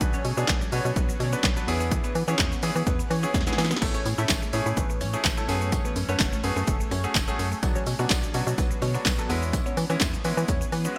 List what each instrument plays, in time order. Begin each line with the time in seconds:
Already playing: ambient pad F#3
0.01 fm bass B1, synth arpeggio sound D3, grand piano B3 D4 F#4 B4, ambient pad B3, kick, closed hi-hat, shaker
0.14 synth arpeggio sound F#3, synth pluck C#4 C#5, shaker
0.25 fm bass B2, open hi-hat, shaker
0.37 fm bass B2, grand piano B3 D4 F#4 G#4, synth arpeggio sound B3, synth pluck D4 D5, shaker
0.48 fm bass B1, synth arpeggio sound D5, kick, snare, clap, closed hi-hat, shaker
0.61 synth arpeggio sound F#3, shaker
0.72 fm bass B2, grand piano B3 D4 F#4 B4, synth pluck C#4 C#5, open hi-hat, shaker
0.85 fm bass B2, synth arpeggio sound F#3, shaker
0.96 fm bass B1, synth pluck B3 B4, kick, closed hi-hat, shaker
1.09 synth arpeggio sound F#3, shaker
1.20 fm bass B2, synth arpeggio sound D3, synth pluck C#4 C#5, open hi-hat, shaker
1.32 grand piano B3 D4 F#4 B4, synth arpeggio sound B3, shaker
1.43 fm bass B1, synth pluck B3 B4, synth arpeggio sound D5, kick, snare, clap, closed hi-hat, shaker
1.56 synth arpeggio sound F#3, grand piano B3 D4 F#4 B4, shaker
1.67 fm bass E2, ambient pad E3 C#4 G#4, grand piano B3 C#4 E4 G#4, synth pluck B3 B4, open hi-hat, shaker
1.80 synth arpeggio sound B3, shaker
1.91 synth arpeggio sound E3, kick, closed hi-hat, shaker
2.04 synth arpeggio sound B3, synth pluck B3 B4, shaker
2.15 fm bass E3, open hi-hat, shaker
2.28 fm bass E3, grand piano B3 C#4 E4 G#4, synth arpeggio sound C#4, synth pluck C#4 C#5, shaker
2.38 fm bass E2, synth arpeggio sound E5, kick, snare, clap, closed hi-hat, shaker
2.52 synth arpeggio sound B3, shaker
2.63 fm bass E3, grand piano B3 C#4 E4 G#4, synth pluck B3 B4, open hi-hat, shaker
2.76 fm bass E3, synth arpeggio sound B3, shaker
2.87 fm bass E2, synth pluck B3 B4, kick, closed hi-hat, shaker
2.99 synth arpeggio sound B3, shaker
3.10 synth arpeggio sound E3, fm bass E3, synth pluck C#4 C#5, open hi-hat, shaker
3.23 grand piano B3 C#4 E4 G#4, synth arpeggio sound C#4, shaker
3.34 fm bass E2, synth arpeggio sound E5, kick, snare, closed hi-hat, shaker
3.41 snare
3.47 grand piano B3 C#4 E4 G#4, synth arpeggio sound B3, snare, shaker
3.53 snare
3.58 fm bass E3, snare, open hi-hat, shaker
3.65 snare
3.71 synth arpeggio sound B3, snare, shaker
3.76 snare
3.82 fm bass A1, synth arpeggio sound E3, grand piano A3 C#4 E4 A4, ambient pad C#4, kick, crash, tambourine
3.94 synth arpeggio sound A3, synth pluck C#4 C#5, shaker
4.06 fm bass A2, open hi-hat, tambourine, shaker
4.18 fm bass A2, grand piano A3 C#4 E4 A4, synth arpeggio sound C#4, synth pluck E4 E5, shaker
4.28 fm bass A1, synth arpeggio sound E5, kick, snare, clap, closed hi-hat, tambourine, shaker
4.42 synth arpeggio sound A3, shaker
4.53 fm bass A2, grand piano A3 C#4 E4 G#4, synth pluck C#4 C#5, open hi-hat, shaker
4.66 fm bass A2, synth arpeggio sound A3, shaker
4.77 fm bass A1, synth pluck B3 B4, kick, closed hi-hat, shaker
4.90 synth arpeggio sound A3, shaker
5.01 fm bass A2, synth arpeggio sound E3, synth pluck C#4 C#5, open hi-hat, tambourine, shaker
5.13 grand piano A3 C#4 E4 G#4, synth arpeggio sound C#4, shaker
5.24 fm bass A1, synth pluck B3 B4, synth arpeggio sound E5, kick, snare, clap, closed hi-hat, tambourine, shaker
5.37 grand piano A3 C#4 E4 A4, synth arpeggio sound A3, shaker
5.48 fm bass F#2, ambient pad F#3 A3 G#4, grand piano A3 C#4 F#4 G#4, synth pluck B3 B4, open hi-hat, tambourine, shaker
5.61 synth arpeggio sound A3, shaker
5.72 synth arpeggio sound F#3, kick, closed hi-hat, tambourine, shaker
5.85 synth arpeggio sound A3, synth pluck B3 B4, shaker
5.96 fm bass F#2, open hi-hat, tambourine, shaker
6.09 fm bass F#2, grand piano A3 C#4 F#4 B4, synth arpeggio sound C#4, synth pluck C#4 C#5, shaker
6.19 fm bass F#1, synth arpeggio sound F#5, kick, snare, clap, closed hi-hat, tambourine, shaker
6.33 synth arpeggio sound A3, shaker
6.43 fm bass F#2, grand piano A3 C#4 F#4 G#4, synth pluck B3 B4, open hi-hat, tambourine, shaker
6.56 fm bass F#2, synth arpeggio sound A3, shaker
6.67 fm bass F#1, synth pluck A3 A4, kick, closed hi-hat, shaker
6.80 synth arpeggio sound A3, shaker
6.91 fm bass F#2, synth arpeggio sound F#3, synth pluck C#4 C#5, open hi-hat, tambourine, shaker
7.04 grand piano A3 C#4 F#4 G#4, synth arpeggio sound C#4, shaker
7.14 fm bass F#1, synth arpeggio sound F#5, kick, snare, clap, closed hi-hat, tambourine, shaker
7.28 grand piano A3 C#4 F#4 G#4, synth arpeggio sound A3, shaker
7.39 fm bass F#2, open hi-hat, tambourine, shaker
7.52 synth arpeggio sound A3, shaker
7.63 fm bass B1, synth arpeggio sound D3, grand piano F#3 B3 D4 F#4, ambient pad B3, kick, closed hi-hat, tambourine, shaker
7.75 synth arpeggio sound F#3, synth pluck C#4 C#5, shaker
7.87 fm bass B2, open hi-hat, tambourine, shaker
7.99 fm bass B2, grand piano F#3 B3 D4 F#4, synth arpeggio sound B3, synth pluck D4 D5, shaker
8.09 fm bass B1, synth arpeggio sound D5, kick, snare, clap, closed hi-hat, tambourine, shaker
8.23 synth arpeggio sound F#3, shaker
8.34 fm bass B2, grand piano F#3 B3 D4 F#4, synth pluck C#4 C#5, open hi-hat, tambourine, shaker
8.47 fm bass B2, synth arpeggio sound F#3, shaker
8.58 fm bass B1, synth pluck B3 B4, kick, closed hi-hat, tambourine, shaker
8.71 synth arpeggio sound F#3, shaker
8.82 fm bass B2, synth arpeggio sound D3, synth pluck C#4 C#5, open hi-hat, tambourine, shaker
8.94 grand piano F#3 B3 D4 F#4, synth arpeggio sound B3, shaker
9.05 fm bass B1, synth pluck B3 B4, synth arpeggio sound D5, kick, snare, clap, closed hi-hat, tambourine, shaker
9.18 grand piano F#3 B3 D4 A4, synth arpeggio sound F#3, shaker
9.29 fm bass E2, ambient pad E3 C#4 G#4, grand piano G#3 B3 C#4 E4, synth pluck B3 B4, open hi-hat, tambourine, shaker
9.42 synth arpeggio sound B3, shaker
9.53 synth arpeggio sound E3, kick, closed hi-hat, tambourine, shaker
9.66 synth arpeggio sound B3, synth pluck C#4 C#5, shaker
9.77 fm bass E3, open hi-hat, tambourine, shaker
9.90 fm bass E3, grand piano G#3 B3 C#4 E4, synth arpeggio sound C#4, synth pluck C#4 C#5, shaker
10.00 fm bass E2, synth arpeggio sound E5, kick, snare, clap, closed hi-hat, tambourine, shaker
10.13 synth arpeggio sound B3, shaker
10.24 fm bass E3, grand piano G#3 B3 C#4 E4, synth pluck B3 B4, open hi-hat, tambourine, shaker
10.37 fm bass E3, synth arpeggio sound B3, shaker
10.48 fm bass E2, synth pluck C#4 C#5, kick, closed hi-hat, tambourine, shaker
10.61 synth arpeggio sound B3, shaker
10.72 synth arpeggio sound E3, fm bass E3, synth pluck B3 B4, open hi-hat, tambourine, shaker
10.85 grand piano G#3 B3 C#4 F#4, synth arpeggio sound C#4, shaker